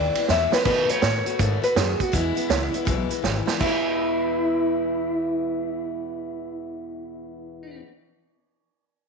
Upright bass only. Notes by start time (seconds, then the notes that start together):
Already playing: D#2
0.29 E2
0.53 muted upright bass stroke
0.65 B2
0.89 muted upright bass stroke
1.02 A2
1.26 muted upright bass stroke
1.40 G#2
1.63 muted upright bass stroke
1.76 F#2
2.14 E2
2.49 C#2
2.74 muted upright bass stroke
2.87 B1
3.10 muted upright bass stroke
3.23 G#1
3.47 muted upright bass stroke
3.61 E2